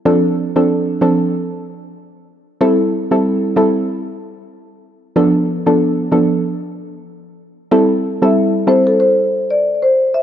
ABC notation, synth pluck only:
X:1
M:4/4
L:1/16
Q:"Swing 16ths" 1/4=94
K:Am
V:1 name="Synth pluck"
[F,CDA] z2 [F,CDA]3 [F,CDA]2 z8 | [G,CEA] z2 [G,CEA]3 [G,CEA]2 z8 | [F,B,DA] z2 [F,B,DA]3 [F,B,DA]2 z8 | [G,CEA] z2 [G,CEA]3 [G,CEA]2 z8 |]